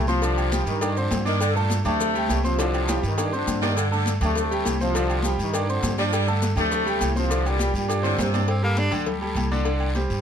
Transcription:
Already playing: upright bass C2
0.07 trombone section C3 F3, grand piano C4 C5 C6, high conga, short guiro, maracas
0.22 grand piano D3 D4 D5, cowbell, high conga, low agogo, long guiro, maracas
0.37 high conga, low agogo, maracas
0.51 grand piano G3 G4 G5, cowbell, high conga, short guiro, maracas
0.66 upright bass G2, trombone section G2 D#3, high conga, low agogo, short guiro, maracas
0.81 grand piano D4 D5 D6, cowbell, high conga, low agogo, long guiro, maracas
0.97 trombone section F2 D3, grand piano C4 C5 C6, high conga, maracas
1.11 upright bass G2, cowbell, high conga, low timbale, low agogo, short guiro, maracas
1.25 saxophone section D#3, grand piano D4 D5 D6, high conga, low agogo, short guiro, maracas
1.40 saxophone section D3, cowbell, high conga, low agogo, long guiro, maracas
1.55 saxophone section A#2, grand piano A3 A4 A5, high conga, maracas
1.70 cowbell, high conga, low agogo, short guiro, maracas
1.85 upright bass D2, trombone section C3 A3, grand piano D4 D5 D6, cowbell, high conga, low conga, low agogo, short guiro, maracas
2.00 cowbell, high conga, low conga, long guiro, maracas
2.14 grand piano G3 G4 G5, high conga, low agogo, maracas
2.28 upright bass C2, cowbell, high conga, low timbale, low agogo, short guiro, maracas
2.44 trombone section C3 F3, grand piano C4 C5 C6, high conga, short guiro, maracas
2.59 grand piano D3 D4 D5, cowbell, high conga, high timbale, low agogo, long guiro, maracas
2.74 high conga, high timbale, low agogo, maracas
2.89 grand piano G3 G4 G5, cowbell, high conga, high timbale, short guiro, maracas
3.03 upright bass G2, trombone section G2 D#3, high conga, low agogo, short guiro, maracas
3.18 grand piano D4 D5 D6, cowbell, high conga, low timbale, low agogo, long guiro, maracas
3.33 trombone section F2 D3, grand piano C4 C5 C6, high conga, maracas
3.47 upright bass G2, cowbell, high conga, low agogo, short guiro, maracas
3.61 saxophone section D#3, grand piano D4 D5 D6, high conga, low timbale, low agogo, short guiro, maracas
3.75 saxophone section D3, cowbell, low agogo, long guiro, maracas
3.91 saxophone section D3, grand piano A3 A4 A5, high conga, maracas
4.06 cowbell, high conga, low agogo, short guiro, maracas
4.21 upright bass D2, trombone section C3 A3, grand piano D4 D5 D6, cowbell, high conga, low conga, low agogo, short guiro, maracas
4.35 cowbell, high conga, low conga, long guiro, maracas
4.50 grand piano G3 G4 G5, high conga, low agogo, maracas
4.65 upright bass C2, cowbell, high conga, low agogo, short guiro, maracas
4.80 trombone section C3 F3, grand piano C4 C5 C6, high conga, short guiro, maracas
4.95 grand piano D3 D4 D5, cowbell, high conga, low agogo, long guiro, maracas
5.08 high conga, low agogo, maracas
5.23 grand piano G3 G4 G5, cowbell, high conga, short guiro, maracas
5.38 upright bass G2, trombone section G2 D#3, high conga, low agogo, short guiro, maracas
5.53 grand piano D4 D5 D6, cowbell, high conga, low agogo, long guiro, maracas
5.68 trombone section F2 D3, grand piano C4 C5 C6, high conga, maracas
5.83 upright bass G2, cowbell, high conga, low timbale, low agogo, short guiro, maracas
5.98 saxophone section G3, grand piano D4 D5 D6, high conga, low agogo, short guiro, maracas
6.06 saxophone section F3
6.13 saxophone section G3, cowbell, low agogo, long guiro, maracas
6.28 saxophone section D3, grand piano A3 A4 A5, high conga, maracas
6.42 cowbell, high conga, low agogo, short guiro, maracas
6.56 upright bass D2, trombone section C3 A3, grand piano D4 D5 D6, cowbell, high conga, low conga, low agogo, short guiro, maracas
6.72 cowbell, high conga, low conga, long guiro, maracas
6.86 grand piano G3 G4 G5, high conga, low agogo, maracas
7.01 upright bass C2, cowbell, high conga, low agogo, short guiro, maracas
7.16 trombone section C3 F3, grand piano C4 C5 C6, high conga, short guiro, maracas
7.30 grand piano D3 D4 D5, cowbell, high conga, low agogo, long guiro, maracas
7.44 trombone section A#2, high conga, low agogo, maracas
7.49 trombone section G3
7.59 grand piano G3 G4 G5, cowbell, high conga, short guiro, maracas
7.74 upright bass G2, trombone section A#2 G3, high conga, low agogo, short guiro, maracas
7.88 grand piano D4 D5 D6, cowbell, high conga, low agogo, long guiro, maracas
8.03 saxophone section D3, grand piano C4 C5 C6, high conga, high timbale, maracas
8.18 upright bass G2, saxophone section C3, cowbell, high conga, low timbale, low agogo, short guiro, maracas
8.33 grand piano D4 D5 D6, high conga, low timbale, low agogo, short guiro, maracas
8.48 tenor saxophone C4, cowbell, high conga, low agogo, long guiro
8.63 grand piano G3 G4 A4, tenor saxophone A#3, high conga
8.77 tenor saxophone D4, cowbell, high conga, low agogo, short guiro
8.91 upright bass D2, grand piano D3 D4 D5, cowbell, high conga, low conga, low agogo, short guiro
9.06 grand piano G3 G4 A4, cowbell, high conga, low conga, long guiro
9.21 grand piano G3 G4 A4, high conga, low agogo
9.35 upright bass C2, cowbell, high conga, low agogo, short guiro
9.52 grand piano D3 D4 D5, high conga, short guiro
9.65 grand piano D3 D4 D5, cowbell, low agogo, long guiro
9.80 high conga, low agogo
9.95 grand piano G3 G4 C5, cowbell, high conga, short guiro
10.10 upright bass G2, high conga, low agogo, short guiro

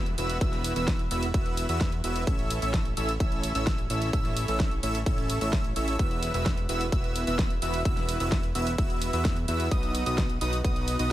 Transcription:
Already playing: analog synth bass E1, downlifter
0.06 closed hi-hat
0.18 analog synth bass E1, supersaw synth B3 E4 F#4 B4 E5, analog synth lead E6, open hi-hat
0.30 closed hi-hat
0.41 analog synth bass E1, supersaw synth B3 E4 F#4 B4 E5, analog synth lead E6, kick, closed hi-hat
0.53 snare, closed hi-hat
0.64 open hi-hat
0.76 analog synth bass E1, supersaw synth B3 E4 F#4 B4 E5, analog synth lead E6, closed hi-hat
0.88 kick, snare, closed hi-hat
0.99 closed hi-hat
1.11 analog synth bass E1, supersaw synth B3 E4 F#4 B4 E5, analog synth lead E6, open hi-hat
1.23 closed hi-hat
1.34 analog synth bass E1, supersaw synth B3 E4 F#4 B4 E5, analog synth lead E6, kick, closed hi-hat
1.46 closed hi-hat
1.57 open hi-hat
1.69 analog synth bass E2, supersaw synth B3 E4 F#4 B4 E5, analog synth lead E6, closed hi-hat
1.81 kick, snare, closed hi-hat
1.92 closed hi-hat
2.04 analog synth bass E1, supersaw synth B3 E4 F#4 B4 E5, analog synth lead E6, open hi-hat
2.16 closed hi-hat
2.27 analog synth bass A1, supersaw synth C#4 E4 A4 C#5 E5, analog synth lead E6, kick, closed hi-hat
2.39 closed hi-hat
2.50 open hi-hat
2.62 analog synth bass A1, supersaw synth C#4 E4 A4 C#5 E5, analog synth lead E6, closed hi-hat
2.74 kick, snare, closed hi-hat
2.85 closed hi-hat
2.97 analog synth bass A1, supersaw synth C#4 E4 A4 C#5 E5, analog synth lead E6, open hi-hat
3.09 closed hi-hat
3.20 analog synth bass A1, supersaw synth C#4 E4 A4 C#5 E5, analog synth lead E6, kick, closed hi-hat
3.32 closed hi-hat
3.43 open hi-hat
3.55 analog synth bass A1, supersaw synth C#4 E4 A4 C#5 E5, analog synth lead E6, closed hi-hat
3.67 kick, snare, closed hi-hat
3.78 closed hi-hat
3.90 analog synth bass A1, supersaw synth C#4 E4 A4 C#5 E5, analog synth lead E6, open hi-hat
4.02 closed hi-hat
4.13 analog synth bass A1, supersaw synth C#4 E4 A4 C#5 E5, analog synth lead E6, kick, closed hi-hat
4.25 snare, closed hi-hat
4.37 open hi-hat
4.48 analog synth bass A1, supersaw synth C#4 E4 A4 C#5 E5, analog synth lead E6, closed hi-hat
4.60 kick, snare, closed hi-hat
4.71 closed hi-hat
4.83 analog synth bass A1, supersaw synth C#4 E4 A4 C#5 E5, analog synth lead E6, open hi-hat
4.95 closed hi-hat
5.06 analog synth bass A1, supersaw synth C#4 E4 A4 C#5 E5, analog synth lead E6, kick, closed hi-hat
5.18 closed hi-hat
5.30 open hi-hat
5.41 analog synth bass A1, supersaw synth C#4 E4 A4 C#5 E5, analog synth lead E6, closed hi-hat
5.53 kick, snare, closed hi-hat
5.64 closed hi-hat
5.76 analog synth bass A1, supersaw synth C#4 E4 A4 C#5 E5, analog synth lead E6, open hi-hat
5.88 closed hi-hat
5.99 analog synth bass E1, supersaw synth B3 E4 F#4 B4 E5, analog synth lead E6, kick, closed hi-hat
6.11 closed hi-hat
6.23 open hi-hat
6.34 analog synth bass E1, supersaw synth B3 E4 F#4 B4 E5, analog synth lead E6, closed hi-hat
6.46 kick, snare, closed hi-hat
6.58 closed hi-hat
6.69 analog synth bass E1, supersaw synth B3 E4 F#4 B4 E5, analog synth lead E6, open hi-hat
6.81 closed hi-hat
6.92 analog synth bass E1, supersaw synth B3 E4 F#4 B4 E5, analog synth lead E6, kick, closed hi-hat
7.04 closed hi-hat
7.16 open hi-hat
7.27 analog synth bass E1, supersaw synth B3 E4 F#4 B4 E5, analog synth lead E6, closed hi-hat
7.39 kick, snare, closed hi-hat
7.50 closed hi-hat
7.62 analog synth bass E1, supersaw synth B3 E4 F#4 B4 E5, analog synth lead E6, open hi-hat
7.74 closed hi-hat
7.85 analog synth bass E1, supersaw synth B3 E4 F#4 B4 E5, analog synth lead E6, kick, closed hi-hat
7.97 snare, closed hi-hat
8.09 open hi-hat
8.20 analog synth bass E1, supersaw synth B3 E4 F#4 B4 E5, analog synth lead E6, closed hi-hat
8.32 kick, snare, closed hi-hat
8.43 closed hi-hat
8.55 analog synth bass E1, supersaw synth B3 E4 F#4 B4 E5, analog synth lead E6, open hi-hat
8.67 closed hi-hat
8.78 analog synth bass E1, supersaw synth B3 E4 F#4 B4 E5, analog synth lead E6, kick, closed hi-hat
8.90 closed hi-hat
9.02 open hi-hat
9.13 analog synth bass E2, supersaw synth B3 E4 F#4 B4 E5, analog synth lead E6, closed hi-hat
9.25 kick, snare, closed hi-hat
9.37 closed hi-hat
9.48 analog synth bass E2, supersaw synth B3 E4 F#4 B4 E5, analog synth lead E6, open hi-hat
9.60 closed hi-hat
9.71 analog synth bass B1, supersaw synth B3 D#4 F#4 B4 D#5, analog synth lead D#6, kick, closed hi-hat
9.83 closed hi-hat
9.95 open hi-hat
10.06 analog synth bass B1, supersaw synth B3 D#4 F#4 B4 D#5, analog synth lead D#6, closed hi-hat
10.18 kick, snare, closed hi-hat
10.30 closed hi-hat
10.41 analog synth bass B1, supersaw synth B3 D#4 F#4 B4 D#5, analog synth lead D#6, open hi-hat
10.53 closed hi-hat
10.64 analog synth bass B1, supersaw synth B3 D#4 F#4 B4 D#5, analog synth lead D#6, kick, closed hi-hat
10.76 closed hi-hat
10.88 open hi-hat
10.99 analog synth bass B1, supersaw synth B3 D#4 F#4 B4 D#5, analog synth lead D#6, closed hi-hat

